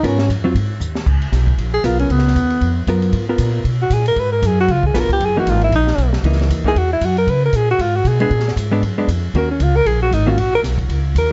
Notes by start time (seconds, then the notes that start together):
0.03 G#2 B3 C#4 F4 A#4, kick, ride
0.19 snare
0.29 F2, kick, hi-hat pedal, ride
0.44 F#3 C4 F4
0.55 G#2, kick, ride
0.80 D#2, hi-hat pedal
0.95 snare
1.06 C#2, kick, crash
1.22 ride
1.32 B1, kick, snare, hi-hat pedal, ride
1.47 kick, ride
1.58 A#1, kick, ride
1.74 G#4
1.84 B1 B3 F4 A#4, kick, hi-hat pedal, ride
1.99 C#4, ride
2.09 C#2 B3, kick, ride
2.19 snare
2.28 snare
2.35 D#2, kick, hi-hat pedal, ride
2.50 ride
2.61 F2, kick, ride
2.87 F#2 B3 F4 A#4, kick, hi-hat pedal, ride
3.02 ride
3.13 G#2, kick, ride
3.29 B3 F4 A#4
3.38 A#2, kick, hi-hat pedal, ride
3.64 B2, kick, ride
3.82 F#4
3.90 A#2 G#4, kick, hi-hat pedal, ride
4.06 A#4, ride
4.16 G#2 B4, kick, ride
4.32 A#4
4.42 F#2, kick, hi-hat pedal, ride
4.47 G#4
4.60 F#4
4.68 C#2 F4, kick, ride
4.83 G#4, kick
4.94 A#1 B3 F4 A#4, kick, snare, hi-hat pedal, ride
4.99 A#4
5.09 G4, muted upright bass stroke, kick, ride
5.20 F#1, ride
5.25 G#4
5.36 E3 A#3 D#4 F#4
5.46 G#1, kick, hi-hat pedal, ride
5.50 F4
5.61 E4, ride
5.72 A#1 D#4, kick, ride
5.87 snare
5.98 B1, kick, hi-hat pedal, ride
6.13 snare
6.23 C#2 E3 A#3 D#4, kick, ride
6.32 snare
6.39 snare, ride
6.49 D#2, kick, hi-hat pedal, ride
6.64 E3 A#3 D#4 G#4, kick
6.75 E2 F#4, kick, ride
6.93 E4
7.01 F#2 F#4, kick, hi-hat pedal, ride
7.17 A#4, ride
7.27 C#3 B4, kick, ride
7.45 A#4
7.53 A#2 G#4, kick, hi-hat pedal, ride
7.71 F#4
7.79 G#2 F4, kick, ride
7.96 F#4
8.04 B2 G#4, kick, hi-hat pedal, ride
8.20 G#3 B3 D4 G#4, ride
8.30 A#2, kick, ride
8.39 snare
8.48 snare
8.56 G#2, kick, hi-hat pedal, ride
8.71 G#3 B3 D4
8.82 F#2, kick, ride
8.98 G#3 B3 D4
9.08 F2, kick, hi-hat pedal, ride
9.34 D#2 D#3 A#3 C#4 F#4 A#4, kick, ride
9.51 C#4
9.60 C#2 F4, kick, hi-hat pedal, ride
9.76 A#4
9.86 A#1 G#4, kick, ride
10.02 F#4
10.11 G#1 D#4, kick, hi-hat pedal, ride
10.26 D#3 A#3 C#4 F4 F#4
10.37 A#1 F#4, kick, ride
10.55 A#4
10.63 B1, kick, snare, hi-hat pedal, ride
10.78 kick, ride
10.89 C#2, kick, ride
11.15 D#2 A#4, kick, hi-hat pedal, ride